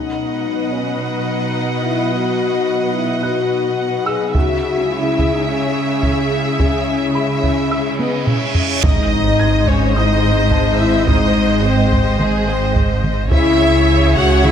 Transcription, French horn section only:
Already playing: D#4
0.71 C#4
0.99 D#4
1.83 E4
2.12 F#4
2.94 E4
3.23 F#4
4.06 G#4
4.35 F#4
4.90 E4
5.33 D#4
5.46 C#4
6.59 C#4
7.99 B3
8.26 C#4
8.83 D#4
9.67 C#4
9.96 D#4
10.79 E4
11.08 D#4
11.64 C4
12.20 G#3
12.48 C4
13.32 E4
14.16 F#4
14.45 E4

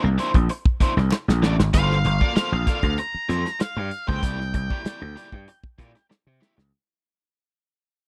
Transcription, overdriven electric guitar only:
0.03 muted overdriven electric guitar stroke
0.18 A#3 D4 E4 C5
0.35 muted overdriven electric guitar stroke
0.50 muted overdriven electric guitar stroke
0.81 A#3 D4 E4 C5
0.97 muted overdriven electric guitar stroke
1.12 muted overdriven electric guitar stroke
1.42 A#3 D4 E4 D5
1.60 muted overdriven electric guitar stroke
1.73 A#3 F4 A4 C5
2.05 muted overdriven electric guitar stroke
2.22 A#3 F4 A4 D5
2.36 A#3 F4 A4 C5
2.53 muted overdriven electric guitar stroke
2.67 A#3 F4 A4 D5
2.84 muted overdriven electric guitar stroke
2.98 muted overdriven electric guitar stroke
3.29 A#3 F4 A4 C5
3.46 muted overdriven electric guitar stroke
3.60 muted overdriven electric guitar stroke
3.77 muted overdriven electric guitar stroke
4.07 A#3 F4 A4 C5
4.22 A#3 E4 G4 D5
4.54 muted overdriven electric guitar stroke
4.70 A#3 E4 G4 D5
4.84 A#3 E4 G4 D5
5.01 muted overdriven electric guitar stroke
5.16 A#3 E4 G4 D5
5.32 muted overdriven electric guitar stroke
5.48 muted overdriven electric guitar stroke
5.78 A#3 E4 G4 D5
5.95 muted overdriven electric guitar stroke
6.10 muted overdriven electric guitar stroke
6.40 A#3 E4 G4 E5
6.57 muted overdriven electric guitar stroke

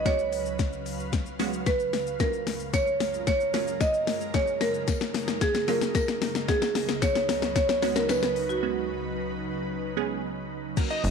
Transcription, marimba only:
0.06 C#5
1.67 B4
2.20 A#4
2.74 C#5
3.27 C#5
3.81 D#5
4.34 C#5
4.61 A#4
5.42 G#4
5.68 A#4
5.95 A#4
6.49 G#4
7.02 C#5
7.56 C#5
7.96 A#4
8.09 B4
8.49 F#4

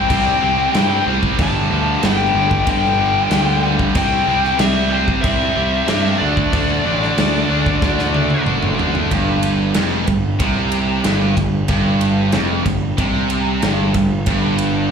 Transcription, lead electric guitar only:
0.09 G5
1.42 A5
2.07 G5
2.71 G5
3.97 G5
4.59 E5
4.89 C5
5.21 E5
6.18 D5

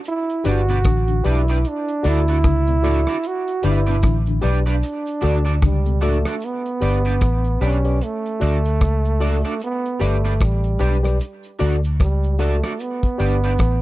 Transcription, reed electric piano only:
0.44 G4 B4 D5
1.24 G4 B4 D5
2.03 F#4 A4 D5
2.68 A4 D5
2.83 F#4 A4 D5
3.63 G4 B4 D5
4.42 G4 B4 D5
5.22 F#4 A4 D5
5.86 A4 D5
6.02 F#4 A4 D5
6.81 G4 B4 D5
7.61 G4 B4 D5
7.84 G4 B4 D5
8.40 F#4 A4 D5
9.20 F#4 A4 D5
10.00 G4 B4 D5
10.79 G4 B4 D5
11.03 G4 B4 D5
11.59 F#4 A4 D5
12.39 F#4 A4 D5
13.18 G4 B4 D5

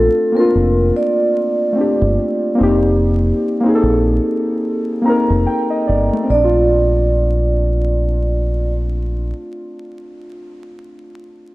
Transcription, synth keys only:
Already playing: A3 C4 D4 F4
0.32 A#3 C4
0.37 D4 F4
1.73 A3 C4
1.78 D4 G4
2.55 A#3 C4
2.60 D#4 G4
3.60 A#3 C4
3.66 D#4 G#4
3.75 A4
5.02 A#3 C4 A#5
5.07 D#4 A#4
5.47 G5
5.70 D#5
5.87 D5
6.13 A3
6.23 C4
6.34 D4
6.44 F4

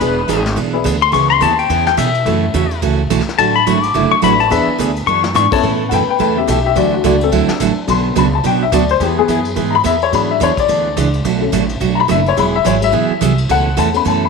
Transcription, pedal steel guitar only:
Already playing: B4
1.02 C6
1.13 C#6
1.30 C6
1.42 A5
1.59 G5
1.87 G5
1.98 E5
3.39 A5
3.56 B5
3.67 C#6
3.83 D6
4.12 C#6
4.24 B5
4.40 A5
4.52 E5
5.07 C#6
5.36 C#6
5.53 A5

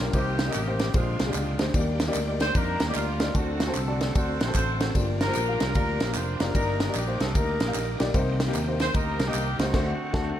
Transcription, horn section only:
Already playing: A#3 D4 F4
0.12 A#3 D#4 G4
0.53 A#3 D#4 G4
0.94 G#3 D4 F4
1.34 G#3 D4 F4
2.42 C5
2.56 D4 G4 A#4
2.89 G4
2.95 A#3 D4 F4
3.35 A3 C4 F#4
3.76 C4 F#4 A4
4.16 F#4 A4 C5
4.41 C5
4.56 F#4 A4 C5
5.22 D4 F4 A#4
5.75 D4 F4 A#4
6.15 C5
6.40 A#4
6.55 D4 D#4 A#4
6.80 A#4
6.95 G4
7.20 A4
7.34 D4 D#4 A#4
8.81 C5
8.95 D#4 G4 A#4
9.27 A#3 D#4 G4
9.60 A3 C4 F#4

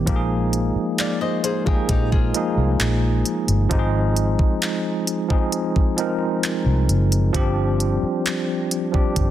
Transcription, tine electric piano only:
0.06 F3 G#3 A#3 D#4 G4
0.16 G#4
1.65 F3 G#3 A#3 D#4 G#4
2.33 F3 G#3 A#3 D#4 G#4
3.69 F3 G#3 C4 D#4 G4
3.79 G#4
5.28 F3 G#3 C4 D#4 G#4
5.96 F3 G#3 C4 D#4 A#4
7.33 F3 G3 C4 D4 G4
8.92 F3 G3 C4 D4 G4

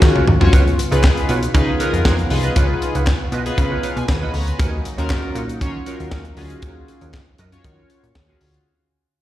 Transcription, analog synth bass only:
0.02 D#3
0.28 D#2
0.42 C2
0.53 C#2
0.92 C#2
1.29 B2
1.54 C#3
1.93 F2
2.05 F2
2.31 C2
2.56 C#2
2.95 C#2
3.32 B2
3.58 C#3
3.96 B2
4.08 D#2
4.33 D2
4.60 D#2
4.98 D#2
5.35 A#2
5.61 D#3
6.00 D#2
6.12 D#2
6.37 D2
6.63 D#2
7.01 D#2
7.39 F#2
7.64 D#3
8.03 A#2
8.15 D#2
8.41 D2

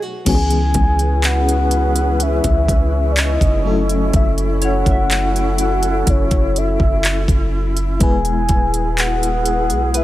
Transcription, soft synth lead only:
0.29 G#5
1.26 F#5
2.23 E5
3.12 D5
3.19 D#5
4.16 E5
4.64 F#5
5.61 F#5
6.09 C#5
6.58 E5
8.03 G#5
9.00 F#5
9.97 E5

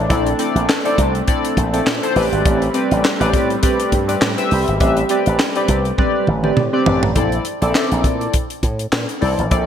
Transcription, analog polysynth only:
0.09 C4 E4 A4 D5
0.39 C4 E4 A4 D5
0.85 C4 E4 A4 D5
1.27 C4 E4 A4 D5
1.73 C4 E4 A4 D5
2.03 C4 E4 A4 C5
2.15 C4 G4 B4 D5
2.74 C4 G4 B4 D5
3.20 C4 G4 B4 D5
3.62 C4 G4 B4 D5
4.08 C4 G4 B4 D5
4.38 C4 G4 B4 E5
4.80 C4 G4 B4 E5
5.10 C4 G4 B4 D5
5.55 C4 G4 B4 D5
5.98 C4 G4 B4 D5
6.43 C4 G4 B4 D5
6.73 C4 G4 B4 D5
7.15 C4 E4 A4 D5
7.61 C4 E4 A4 D5
9.21 C4 E4 A4 D5
9.51 C4 E4 A4 D5

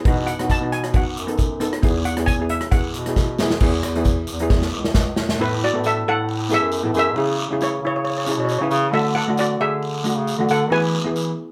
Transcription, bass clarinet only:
0.05 B2
0.39 B2
1.16 F#2
1.83 E2
2.17 E2
2.94 B2
3.61 E2
3.84 E2
4.29 E2
4.73 C#2
4.94 C#2
5.39 A2
5.73 A2
6.06 A2
6.62 F#2
6.84 A2
6.93 F#2
7.16 C#3
7.50 C#3
7.82 C#3
8.38 B2
8.60 C#3
8.70 C#3
8.93 D3
9.27 D3
9.59 D3
10.16 C#3
10.38 D3
10.49 D3
10.71 E3
11.05 E3

